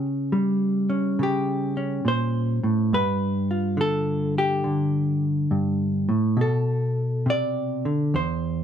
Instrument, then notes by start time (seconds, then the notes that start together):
hollow-body jazz guitar
Already playing: C#3 C#4
0.32 G3
0.90 C#4
1.19 C#3 G4
1.77 C#4
2.05 A#2 C5
2.63 A2
2.93 G2 B4
3.51 F4
3.77 D3 A4
4.38 G4
4.64 D3
5.51 G2
6.09 A2
6.37 B2
6.41 A4
7.26 C3
7.30 D5
7.85 D3
8.14 E2 C5